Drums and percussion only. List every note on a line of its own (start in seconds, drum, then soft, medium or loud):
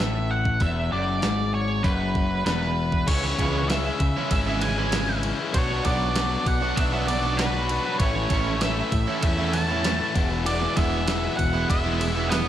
0.00 snare loud
0.45 kick medium
0.60 kick medium
0.60 open hi-hat soft
1.22 snare loud
1.22 open hi-hat soft
1.84 kick loud
1.84 open hi-hat medium
2.15 kick medium
2.46 snare loud
2.46 open hi-hat medium
2.63 snare soft
2.92 kick medium
3.08 kick loud
3.08 crash loud
3.08 ride medium
3.39 kick medium
3.39 ride medium
3.70 snare loud
3.70 ride medium
4.00 kick medium
4.00 ride medium
4.31 kick loud
4.31 ride medium
4.61 ride medium
4.92 snare loud
4.92 ride medium
5.23 ride medium
5.54 kick loud
5.54 ride medium
5.85 kick medium
5.85 ride medium
6.16 snare loud
6.16 ride loud
6.46 kick medium
6.46 ride medium
6.77 kick loud
6.77 ride loud
7.08 ride medium
7.39 snare loud
7.39 ride medium
7.69 ride medium
8.00 kick loud
8.00 ride medium
8.30 kick medium
8.30 ride medium
8.61 snare loud
8.61 ride medium
8.92 kick medium
8.92 ride medium
9.23 kick loud
9.23 ride medium
9.53 ride medium
9.84 snare loud
9.84 ride medium
10.16 kick loud
10.16 ride medium
10.46 ride medium
10.77 kick medium
10.77 ride medium
11.08 snare loud
11.08 ride medium
11.39 kick medium
11.39 ride medium
11.70 kick loud
11.70 ride medium
12.01 ride medium
12.32 snare loud
12.32 ride medium